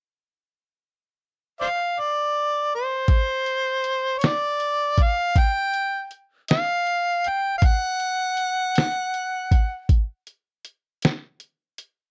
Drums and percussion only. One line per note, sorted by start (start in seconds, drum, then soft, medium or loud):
3.08 kick medium
3.08 closed hi-hat medium
3.46 closed hi-hat soft
3.84 closed hi-hat soft
4.21 snare medium
4.21 closed hi-hat medium
4.60 closed hi-hat soft
4.98 kick medium
4.98 closed hi-hat soft
5.36 kick medium
5.36 closed hi-hat medium
5.74 closed hi-hat soft
6.11 closed hi-hat soft
6.48 snare medium
6.48 closed hi-hat medium
6.87 closed hi-hat soft
7.24 closed hi-hat soft
7.62 kick medium
7.62 closed hi-hat medium
8.00 closed hi-hat soft
8.37 closed hi-hat soft
8.76 snare medium
8.76 closed hi-hat medium
9.14 closed hi-hat soft
9.51 kick medium
9.51 closed hi-hat soft
9.89 kick medium
9.89 closed hi-hat medium
10.27 closed hi-hat soft
10.65 closed hi-hat soft
11.02 snare medium
11.02 closed hi-hat medium
11.40 closed hi-hat medium
11.78 closed hi-hat medium